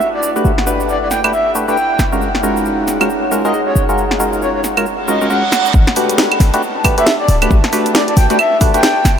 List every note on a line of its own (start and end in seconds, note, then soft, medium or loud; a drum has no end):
0.00 0.43 G1 medium
0.00 1.99 E4 medium
0.00 1.99 A4 medium
0.00 1.99 D5 medium
0.00 5.75 F#5 medium
0.00 1.99 A5 medium
0.00 cabasa soft
0.14 0.30 D5 medium
0.23 cabasa medium
0.36 0.52 A3 medium
0.36 0.52 D4 medium
0.36 0.52 F#4 medium
0.36 0.52 G4 medium
0.36 0.52 B4 medium
0.36 cabasa soft
0.45 1.97 G1 medium
0.45 cabasa soft
0.58 snare medium
0.67 1.21 A3 medium
0.67 1.21 D4 medium
0.67 1.21 F#4 medium
0.67 1.21 G4 medium
0.67 1.21 B4 medium
0.67 cabasa medium
0.80 cabasa soft
0.89 0.97 D5 medium
0.89 cabasa soft
1.02 1.08 D5 medium
1.11 1.19 G5 medium
1.11 snare soft
1.11 cabasa medium
1.24 1.33 A3 medium
1.24 1.33 D4 medium
1.24 1.33 F#4 medium
1.24 1.33 G4 medium
1.24 1.33 B4 loud
1.24 1.30 G5 medium
1.24 cabasa soft
1.24 claves medium
1.33 1.51 E5 medium
1.33 cabasa soft
1.55 1.66 A3 medium
1.55 1.66 D4 medium
1.55 1.66 F#4 medium
1.55 1.66 G4 medium
1.55 1.66 B4 medium
1.55 cabasa medium
1.68 1.77 A3 medium
1.68 1.77 D4 medium
1.68 1.77 F#4 medium
1.68 1.77 G4 medium
1.68 1.77 B4 medium
1.68 2.05 G5 medium
1.68 cabasa soft
1.77 cabasa soft
1.99 3.74 F#1 medium
1.99 5.74 D#4 medium
1.99 snare medium
1.99 cabasa medium
2.12 2.29 G#3 medium
2.12 2.29 C#4 medium
2.12 2.29 F4 medium
2.12 2.29 F#4 medium
2.12 2.29 A#4 medium
2.12 cabasa soft
2.18 5.74 G#4 medium
2.18 cabasa soft
2.35 5.74 C#5 medium
2.35 snare soft
2.43 2.98 G#3 medium
2.43 2.98 C#4 medium
2.43 2.98 F4 medium
2.43 2.98 F#4 medium
2.43 2.98 A#4 medium
2.43 cabasa medium
2.57 cabasa soft
2.66 cabasa soft
2.88 snare soft
2.88 cabasa medium
3.01 3.09 G#3 medium
3.01 3.09 C#4 medium
3.01 3.09 F4 medium
3.01 3.09 F#4 medium
3.01 3.09 A#4 medium
3.01 cabasa soft
3.01 claves medium
3.10 cabasa soft
3.32 3.43 G#3 medium
3.32 3.43 C#4 medium
3.32 3.43 F4 medium
3.32 3.43 F#4 medium
3.32 3.43 A#4 medium
3.32 cabasa medium
3.44 3.53 G#3 medium
3.44 3.53 C#4 medium
3.44 3.53 F4 medium
3.44 3.53 F#4 medium
3.44 3.53 A#4 loud
3.44 3.60 D#5 medium
3.44 cabasa soft
3.54 cabasa soft
3.67 3.82 C#5 medium
3.76 5.50 F#1 medium
3.76 cabasa medium
3.89 4.05 G#3 medium
3.89 4.05 C#4 medium
3.89 4.05 F4 medium
3.89 4.05 F#4 medium
3.89 4.05 A#4 medium
3.89 cabasa soft
3.98 cabasa soft
4.11 snare medium
4.20 4.74 G#3 medium
4.20 4.74 C#4 medium
4.20 4.74 F4 medium
4.20 4.74 F#4 medium
4.20 4.74 A#4 medium
4.20 cabasa medium
4.33 cabasa soft
4.42 4.50 C#5 medium
4.42 cabasa soft
4.55 4.61 C#5 medium
4.64 snare soft
4.64 cabasa medium
4.77 4.86 G#3 medium
4.77 4.86 C#4 medium
4.77 4.86 F4 medium
4.77 4.86 F#4 medium
4.77 4.86 A#4 medium
4.77 cabasa soft
4.77 claves medium
4.86 reverse cymbal medium
4.86 cabasa soft
5.08 5.19 G#3 medium
5.08 5.19 C#4 medium
5.08 5.19 F4 medium
5.08 5.19 F#4 medium
5.08 5.19 A#4 medium
5.08 5.26 D#5 medium
5.08 cabasa medium
5.21 5.29 G#3 medium
5.21 5.29 C#4 medium
5.21 5.29 F4 medium
5.21 5.29 F#4 medium
5.21 5.29 A#4 medium
5.21 cabasa soft
5.30 5.43 G#3 medium
5.30 5.43 C#4 medium
5.30 5.43 F4 medium
5.30 5.43 F#4 medium
5.30 5.43 A#4 medium
5.30 5.65 F#5 medium
5.30 cabasa soft
5.52 snare medium
5.52 cabasa medium
5.65 cabasa soft
5.74 5.85 G1 loud
5.74 9.19 A5 medium
5.74 kick loud
5.74 cabasa soft
5.87 snare medium
5.87 closed hi-hat medium
5.96 6.50 A3 medium
5.96 6.50 D4 medium
5.96 6.51 F#4 medium
5.96 6.50 G4 medium
5.96 6.50 B4 medium
5.96 open hi-hat loud
5.96 cabasa medium
6.10 closed hi-hat medium
6.10 cabasa soft
6.18 snare loud
6.18 cabasa soft
6.32 closed hi-hat medium
6.32 claves medium
6.40 6.51 G1 loud
6.40 snare soft
6.40 open hi-hat loud
6.40 cabasa medium
6.54 6.62 A3 medium
6.54 6.62 D4 medium
6.54 6.62 F#4 medium
6.54 6.62 G4 medium
6.54 6.62 B4 medium
6.54 closed hi-hat medium
6.54 cabasa soft
6.62 cabasa soft
6.84 6.96 A3 medium
6.84 6.96 D4 medium
6.84 6.96 F#4 medium
6.84 6.96 G4 medium
6.84 6.96 B4 medium
6.84 kick loud
6.84 open hi-hat loud
6.84 cabasa medium
6.84 claves medium
6.98 7.06 A3 medium
6.98 7.06 D4 medium
6.98 7.06 F#4 medium
6.98 7.06 G4 medium
6.98 7.06 B4 loud
6.98 7.14 E5 loud
6.98 closed hi-hat medium
6.98 cabasa soft
7.07 snare loud
7.07 cabasa soft
7.20 7.36 D5 loud
7.29 7.47 D1 loud
7.29 open hi-hat loud
7.29 cabasa medium
7.42 7.58 A3 medium
7.42 7.58 D4 medium
7.42 7.58 F#4 medium
7.42 7.58 G4 medium
7.42 7.58 B4 medium
7.42 closed hi-hat medium
7.42 cabasa soft
7.42 claves medium
7.51 7.61 G1 loud
7.51 kick loud
7.51 cabasa soft
7.64 snare medium
7.64 closed hi-hat medium
7.73 8.27 A3 medium
7.73 8.27 D4 medium
7.73 8.27 F#4 medium
7.73 8.27 G4 medium
7.73 8.27 B4 loud
7.73 open hi-hat loud
7.73 cabasa medium
7.86 closed hi-hat medium
7.86 cabasa soft
7.95 8.03 D5 medium
7.95 snare loud
7.95 cabasa soft
8.08 8.14 D5 medium
8.08 closed hi-hat medium
8.17 8.28 G1 medium
8.17 8.25 G5 medium
8.17 open hi-hat loud
8.17 cabasa medium
8.30 8.39 A3 medium
8.30 8.39 D4 medium
8.30 8.39 F#4 medium
8.30 8.39 G4 medium
8.30 8.39 B4 medium
8.30 8.36 G5 medium
8.30 closed hi-hat medium
8.30 cabasa soft
8.39 8.57 E5 medium
8.39 cabasa soft
8.39 claves medium
8.61 8.72 A3 medium
8.61 8.72 D4 medium
8.61 8.72 F#4 medium
8.61 8.72 G4 medium
8.61 8.72 B4 loud
8.61 kick loud
8.61 open hi-hat loud
8.61 cabasa medium
8.74 8.83 A3 loud
8.74 8.83 D4 medium
8.74 8.83 F#4 medium
8.74 8.83 G4 medium
8.74 8.83 B4 loud
8.74 9.10 G5 loud
8.74 closed hi-hat medium
8.74 cabasa soft
8.83 snare loud
8.83 cabasa soft
9.05 9.19 F#1 medium
9.05 snare medium
9.05 open hi-hat loud
9.05 cabasa medium